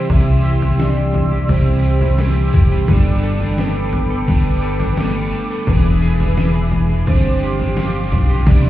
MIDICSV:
0, 0, Header, 1, 7, 480
1, 0, Start_track
1, 0, Tempo, 697674
1, 67, Time_signature, 4, 2, 24, 8
1, 5984, End_track
2, 0, Start_track
2, 0, Title_t, "Analog synth pad"
2, 0, Program_c, 0, 89
2, 0, Note_on_c, 0, 67, 81
2, 0, Note_on_c, 0, 76, 71
2, 0, Note_on_c, 0, 84, 77
2, 0, Note_on_c, 0, 88, 93
2, 1959, Note_off_c, 0, 76, 0
2, 1961, Note_off_c, 0, 67, 0
2, 1961, Note_off_c, 0, 84, 0
2, 1962, Note_off_c, 0, 88, 0
2, 1988, Note_on_c, 0, 83, 72
2, 1989, Note_on_c, 0, 79, 67
2, 1990, Note_on_c, 0, 69, 89
2, 1992, Note_on_c, 0, 86, 98
2, 3888, Note_off_c, 0, 83, 0
2, 3889, Note_off_c, 0, 69, 0
2, 3889, Note_off_c, 0, 79, 0
2, 3911, Note_on_c, 0, 83, 75
2, 3914, Note_on_c, 0, 68, 76
2, 3915, Note_on_c, 0, 76, 74
2, 4842, Note_off_c, 0, 86, 0
2, 4860, Note_off_c, 0, 83, 0
2, 4861, Note_off_c, 0, 68, 0
2, 4862, Note_off_c, 0, 76, 0
2, 4867, Note_on_c, 0, 77, 66
2, 4868, Note_on_c, 0, 67, 70
2, 4869, Note_on_c, 0, 84, 63
2, 4870, Note_on_c, 0, 86, 78
2, 5813, Note_off_c, 0, 67, 0
2, 5813, Note_off_c, 0, 84, 0
2, 5817, Note_off_c, 0, 77, 0
2, 5818, Note_on_c, 0, 76, 77
2, 5819, Note_off_c, 0, 86, 0
2, 5821, Note_on_c, 0, 67, 84
2, 5821, Note_on_c, 0, 84, 103
2, 5822, Note_on_c, 0, 83, 72
2, 5984, Note_off_c, 0, 67, 0
2, 5984, Note_off_c, 0, 76, 0
2, 5984, Note_off_c, 0, 83, 0
2, 5984, Note_off_c, 0, 84, 0
2, 5984, End_track
3, 0, Start_track
3, 0, Title_t, "Soft synth lead"
3, 0, Program_c, 1, 80
3, 0, Note_on_c, 1, 72, 100
3, 79, Note_on_c, 1, 76, 91
3, 89, Note_off_c, 1, 72, 0
3, 557, Note_on_c, 1, 74, 88
3, 568, Note_off_c, 1, 76, 0
3, 1030, Note_off_c, 1, 74, 0
3, 1034, Note_on_c, 1, 72, 92
3, 1514, Note_on_c, 1, 67, 81
3, 1524, Note_off_c, 1, 72, 0
3, 1993, Note_on_c, 1, 74, 88
3, 2003, Note_off_c, 1, 67, 0
3, 2474, Note_on_c, 1, 71, 91
3, 2484, Note_off_c, 1, 74, 0
3, 2947, Note_off_c, 1, 71, 0
3, 2951, Note_on_c, 1, 71, 90
3, 3434, Note_on_c, 1, 69, 89
3, 3444, Note_off_c, 1, 71, 0
3, 3917, Note_on_c, 1, 71, 84
3, 3927, Note_off_c, 1, 69, 0
3, 4632, Note_off_c, 1, 71, 0
3, 4871, Note_on_c, 1, 72, 101
3, 5322, Note_off_c, 1, 72, 0
3, 5835, Note_on_c, 1, 74, 105
3, 5984, Note_off_c, 1, 74, 0
3, 5984, End_track
4, 0, Start_track
4, 0, Title_t, "Clean electric guitar"
4, 0, Program_c, 2, 27
4, 0, Note_on_c, 2, 52, 56
4, 0, Note_on_c, 2, 64, 53
4, 0, Note_on_c, 2, 67, 59
4, 70, Note_on_c, 2, 48, 77
4, 181, Note_off_c, 2, 64, 0
4, 189, Note_on_c, 2, 64, 56
4, 304, Note_off_c, 2, 67, 0
4, 307, Note_on_c, 2, 67, 58
4, 420, Note_off_c, 2, 64, 0
4, 428, Note_on_c, 2, 64, 49
4, 537, Note_off_c, 2, 52, 0
4, 546, Note_on_c, 2, 52, 55
4, 662, Note_off_c, 2, 67, 0
4, 665, Note_on_c, 2, 67, 58
4, 775, Note_off_c, 2, 64, 0
4, 783, Note_on_c, 2, 64, 49
4, 902, Note_off_c, 2, 67, 0
4, 904, Note_on_c, 2, 67, 62
4, 1017, Note_off_c, 2, 48, 0
4, 1025, Note_on_c, 2, 48, 71
4, 1138, Note_off_c, 2, 64, 0
4, 1146, Note_on_c, 2, 64, 57
4, 1264, Note_off_c, 2, 67, 0
4, 1266, Note_on_c, 2, 67, 58
4, 1380, Note_off_c, 2, 64, 0
4, 1388, Note_on_c, 2, 64, 51
4, 1498, Note_off_c, 2, 52, 0
4, 1507, Note_on_c, 2, 52, 56
4, 1623, Note_off_c, 2, 67, 0
4, 1626, Note_on_c, 2, 67, 59
4, 1739, Note_off_c, 2, 64, 0
4, 1747, Note_on_c, 2, 64, 55
4, 1867, Note_off_c, 2, 67, 0
4, 1870, Note_on_c, 2, 67, 59
4, 1986, Note_off_c, 2, 52, 0
4, 1989, Note_on_c, 2, 55, 76
4, 2034, Note_off_c, 2, 48, 0
4, 2035, Note_off_c, 2, 64, 0
4, 2107, Note_on_c, 2, 62, 57
4, 2224, Note_off_c, 2, 67, 0
4, 2226, Note_on_c, 2, 69, 57
4, 2344, Note_off_c, 2, 62, 0
4, 2347, Note_on_c, 2, 62, 53
4, 2470, Note_on_c, 2, 59, 61
4, 2579, Note_off_c, 2, 69, 0
4, 2587, Note_on_c, 2, 69, 51
4, 2704, Note_off_c, 2, 62, 0
4, 2707, Note_on_c, 2, 62, 48
4, 2815, Note_off_c, 2, 69, 0
4, 2824, Note_on_c, 2, 69, 62
4, 2935, Note_off_c, 2, 55, 0
4, 2943, Note_on_c, 2, 55, 73
4, 3061, Note_off_c, 2, 62, 0
4, 3063, Note_on_c, 2, 62, 55
4, 3172, Note_off_c, 2, 69, 0
4, 3180, Note_on_c, 2, 69, 61
4, 3297, Note_off_c, 2, 62, 0
4, 3300, Note_on_c, 2, 62, 58
4, 3420, Note_off_c, 2, 59, 0
4, 3423, Note_on_c, 2, 59, 58
4, 3536, Note_off_c, 2, 69, 0
4, 3544, Note_on_c, 2, 69, 58
4, 3658, Note_off_c, 2, 62, 0
4, 3661, Note_on_c, 2, 62, 59
4, 3778, Note_off_c, 2, 69, 0
4, 3786, Note_on_c, 2, 69, 56
4, 3906, Note_on_c, 2, 40, 72
4, 3953, Note_off_c, 2, 55, 0
4, 3953, Note_off_c, 2, 59, 0
4, 3955, Note_off_c, 2, 69, 0
4, 4024, Note_off_c, 2, 62, 0
4, 4027, Note_on_c, 2, 62, 55
4, 4144, Note_on_c, 2, 68, 55
4, 4262, Note_off_c, 2, 62, 0
4, 4265, Note_on_c, 2, 62, 48
4, 4382, Note_on_c, 2, 52, 56
4, 4499, Note_off_c, 2, 68, 0
4, 4508, Note_on_c, 2, 68, 58
4, 4618, Note_off_c, 2, 62, 0
4, 4626, Note_on_c, 2, 62, 49
4, 4737, Note_off_c, 2, 68, 0
4, 4745, Note_on_c, 2, 68, 63
4, 4866, Note_off_c, 2, 40, 0
4, 4869, Note_on_c, 2, 43, 71
4, 4913, Note_off_c, 2, 52, 0
4, 4914, Note_off_c, 2, 68, 0
4, 4915, Note_off_c, 2, 62, 0
4, 4989, Note_on_c, 2, 62, 59
4, 5109, Note_on_c, 2, 67, 57
4, 5222, Note_off_c, 2, 62, 0
4, 5231, Note_on_c, 2, 62, 56
4, 5349, Note_on_c, 2, 53, 56
4, 5465, Note_off_c, 2, 67, 0
4, 5468, Note_on_c, 2, 67, 59
4, 5581, Note_off_c, 2, 62, 0
4, 5590, Note_on_c, 2, 62, 51
4, 5705, Note_off_c, 2, 67, 0
4, 5708, Note_on_c, 2, 67, 56
4, 5830, Note_on_c, 2, 48, 84
4, 5876, Note_off_c, 2, 43, 0
4, 5876, Note_off_c, 2, 53, 0
4, 5876, Note_off_c, 2, 62, 0
4, 5984, Note_off_c, 2, 48, 0
4, 5984, Note_off_c, 2, 67, 0
4, 5984, End_track
5, 0, Start_track
5, 0, Title_t, "Overdriven electric guitar"
5, 0, Program_c, 3, 29
5, 0, Note_on_c, 3, 60, 59
5, 0, Note_on_c, 3, 64, 55
5, 0, Note_on_c, 3, 67, 57
5, 58, Note_on_c, 3, 48, 55
5, 69, Note_off_c, 3, 60, 0
5, 71, Note_on_c, 3, 55, 56
5, 74, Note_off_c, 3, 64, 0
5, 83, Note_on_c, 3, 60, 60
5, 94, Note_on_c, 3, 64, 57
5, 101, Note_off_c, 3, 67, 0
5, 103, Note_on_c, 3, 67, 56
5, 1016, Note_off_c, 3, 55, 0
5, 1019, Note_on_c, 3, 55, 54
5, 1020, Note_off_c, 3, 60, 0
5, 1023, Note_off_c, 3, 48, 0
5, 1028, Note_on_c, 3, 60, 49
5, 1029, Note_off_c, 3, 64, 0
5, 1037, Note_on_c, 3, 64, 53
5, 1044, Note_off_c, 3, 67, 0
5, 1047, Note_on_c, 3, 67, 58
5, 1490, Note_off_c, 3, 55, 0
5, 1492, Note_on_c, 3, 55, 53
5, 1495, Note_off_c, 3, 60, 0
5, 1504, Note_on_c, 3, 60, 57
5, 1505, Note_off_c, 3, 64, 0
5, 1513, Note_on_c, 3, 64, 58
5, 1520, Note_off_c, 3, 67, 0
5, 1522, Note_on_c, 3, 67, 58
5, 1968, Note_off_c, 3, 55, 0
5, 1971, Note_on_c, 3, 55, 53
5, 1985, Note_off_c, 3, 60, 0
5, 1988, Note_on_c, 3, 59, 61
5, 1990, Note_off_c, 3, 64, 0
5, 2003, Note_on_c, 3, 62, 68
5, 2013, Note_off_c, 3, 67, 0
5, 2015, Note_on_c, 3, 69, 67
5, 2931, Note_off_c, 3, 55, 0
5, 2939, Note_on_c, 3, 55, 54
5, 2949, Note_off_c, 3, 59, 0
5, 2952, Note_on_c, 3, 59, 52
5, 2959, Note_off_c, 3, 62, 0
5, 2961, Note_off_c, 3, 69, 0
5, 2961, Note_on_c, 3, 62, 56
5, 2970, Note_on_c, 3, 69, 56
5, 3408, Note_off_c, 3, 55, 0
5, 3416, Note_on_c, 3, 55, 55
5, 3424, Note_off_c, 3, 59, 0
5, 3427, Note_on_c, 3, 59, 53
5, 3434, Note_off_c, 3, 62, 0
5, 3437, Note_on_c, 3, 62, 54
5, 3438, Note_off_c, 3, 69, 0
5, 3447, Note_on_c, 3, 69, 61
5, 3900, Note_on_c, 3, 40, 52
5, 3902, Note_off_c, 3, 55, 0
5, 3904, Note_off_c, 3, 59, 0
5, 3904, Note_on_c, 3, 47, 51
5, 3910, Note_on_c, 3, 52, 63
5, 3913, Note_on_c, 3, 59, 61
5, 3914, Note_off_c, 3, 62, 0
5, 3917, Note_off_c, 3, 69, 0
5, 3917, Note_on_c, 3, 62, 68
5, 3920, Note_on_c, 3, 68, 69
5, 4131, Note_off_c, 3, 68, 0
5, 4139, Note_on_c, 3, 68, 47
5, 4143, Note_off_c, 3, 40, 0
5, 4143, Note_off_c, 3, 62, 0
5, 4145, Note_off_c, 3, 47, 0
5, 4148, Note_off_c, 3, 52, 0
5, 4150, Note_off_c, 3, 59, 0
5, 4151, Note_on_c, 3, 62, 41
5, 4161, Note_on_c, 3, 59, 34
5, 4170, Note_on_c, 3, 52, 36
5, 4855, Note_off_c, 3, 52, 0
5, 4858, Note_on_c, 3, 53, 49
5, 4863, Note_off_c, 3, 68, 0
5, 4867, Note_off_c, 3, 59, 0
5, 4869, Note_off_c, 3, 62, 0
5, 4870, Note_on_c, 3, 60, 53
5, 4880, Note_on_c, 3, 62, 59
5, 4888, Note_on_c, 3, 67, 59
5, 5331, Note_off_c, 3, 53, 0
5, 5339, Note_on_c, 3, 53, 54
5, 5347, Note_off_c, 3, 60, 0
5, 5350, Note_on_c, 3, 60, 51
5, 5353, Note_off_c, 3, 62, 0
5, 5360, Note_off_c, 3, 67, 0
5, 5360, Note_on_c, 3, 62, 53
5, 5369, Note_on_c, 3, 67, 57
5, 5815, Note_on_c, 3, 48, 62
5, 5823, Note_off_c, 3, 53, 0
5, 5829, Note_on_c, 3, 55, 66
5, 5834, Note_off_c, 3, 62, 0
5, 5839, Note_off_c, 3, 60, 0
5, 5842, Note_on_c, 3, 59, 69
5, 5852, Note_on_c, 3, 64, 72
5, 5860, Note_off_c, 3, 67, 0
5, 5863, Note_on_c, 3, 67, 75
5, 5984, Note_off_c, 3, 48, 0
5, 5984, Note_off_c, 3, 55, 0
5, 5984, Note_off_c, 3, 59, 0
5, 5984, Note_off_c, 3, 64, 0
5, 5984, Note_off_c, 3, 67, 0
5, 5984, End_track
6, 0, Start_track
6, 0, Title_t, "Analog synth bass"
6, 0, Program_c, 4, 38
6, 66, Note_on_c, 4, 36, 93
6, 999, Note_off_c, 4, 36, 0
6, 1026, Note_on_c, 4, 36, 80
6, 1719, Note_off_c, 4, 36, 0
6, 1747, Note_on_c, 4, 29, 86
6, 1975, Note_off_c, 4, 29, 0
6, 1984, Note_on_c, 4, 31, 97
6, 2918, Note_off_c, 4, 31, 0
6, 2944, Note_on_c, 4, 31, 98
6, 3638, Note_off_c, 4, 31, 0
6, 3905, Note_on_c, 4, 28, 97
6, 4838, Note_off_c, 4, 28, 0
6, 4866, Note_on_c, 4, 31, 96
6, 5559, Note_off_c, 4, 31, 0
6, 5586, Note_on_c, 4, 35, 77
6, 5815, Note_off_c, 4, 35, 0
6, 5826, Note_on_c, 4, 36, 106
6, 5984, Note_off_c, 4, 36, 0
6, 5984, End_track
7, 0, Start_track
7, 0, Title_t, "Drums"
7, 67, Note_on_c, 9, 36, 94
7, 68, Note_on_c, 9, 43, 88
7, 136, Note_off_c, 9, 36, 0
7, 136, Note_off_c, 9, 43, 0
7, 429, Note_on_c, 9, 43, 55
7, 498, Note_off_c, 9, 43, 0
7, 547, Note_on_c, 9, 38, 90
7, 615, Note_off_c, 9, 38, 0
7, 785, Note_on_c, 9, 43, 62
7, 854, Note_off_c, 9, 43, 0
7, 1025, Note_on_c, 9, 36, 78
7, 1027, Note_on_c, 9, 43, 58
7, 1094, Note_off_c, 9, 36, 0
7, 1096, Note_off_c, 9, 43, 0
7, 1384, Note_on_c, 9, 43, 64
7, 1453, Note_off_c, 9, 43, 0
7, 1502, Note_on_c, 9, 38, 84
7, 1571, Note_off_c, 9, 38, 0
7, 1747, Note_on_c, 9, 36, 74
7, 1816, Note_off_c, 9, 36, 0
7, 1983, Note_on_c, 9, 43, 83
7, 1985, Note_on_c, 9, 36, 101
7, 2051, Note_off_c, 9, 43, 0
7, 2053, Note_off_c, 9, 36, 0
7, 2342, Note_on_c, 9, 43, 50
7, 2411, Note_off_c, 9, 43, 0
7, 2462, Note_on_c, 9, 38, 89
7, 2531, Note_off_c, 9, 38, 0
7, 2703, Note_on_c, 9, 43, 63
7, 2771, Note_off_c, 9, 43, 0
7, 2944, Note_on_c, 9, 43, 58
7, 2945, Note_on_c, 9, 36, 81
7, 3013, Note_off_c, 9, 36, 0
7, 3013, Note_off_c, 9, 43, 0
7, 3302, Note_on_c, 9, 43, 59
7, 3370, Note_off_c, 9, 43, 0
7, 3422, Note_on_c, 9, 38, 98
7, 3490, Note_off_c, 9, 38, 0
7, 3902, Note_on_c, 9, 43, 92
7, 3905, Note_on_c, 9, 36, 93
7, 3971, Note_off_c, 9, 43, 0
7, 3974, Note_off_c, 9, 36, 0
7, 4267, Note_on_c, 9, 43, 58
7, 4336, Note_off_c, 9, 43, 0
7, 4384, Note_on_c, 9, 38, 91
7, 4453, Note_off_c, 9, 38, 0
7, 4622, Note_on_c, 9, 43, 62
7, 4690, Note_off_c, 9, 43, 0
7, 4865, Note_on_c, 9, 36, 76
7, 4866, Note_on_c, 9, 43, 60
7, 4934, Note_off_c, 9, 36, 0
7, 4935, Note_off_c, 9, 43, 0
7, 5225, Note_on_c, 9, 43, 63
7, 5293, Note_off_c, 9, 43, 0
7, 5344, Note_on_c, 9, 38, 93
7, 5412, Note_off_c, 9, 38, 0
7, 5588, Note_on_c, 9, 36, 73
7, 5657, Note_off_c, 9, 36, 0
7, 5825, Note_on_c, 9, 36, 102
7, 5825, Note_on_c, 9, 43, 110
7, 5825, Note_on_c, 9, 49, 93
7, 5825, Note_on_c, 9, 54, 61
7, 5893, Note_off_c, 9, 49, 0
7, 5894, Note_off_c, 9, 36, 0
7, 5894, Note_off_c, 9, 43, 0
7, 5894, Note_off_c, 9, 54, 0
7, 5984, End_track
0, 0, End_of_file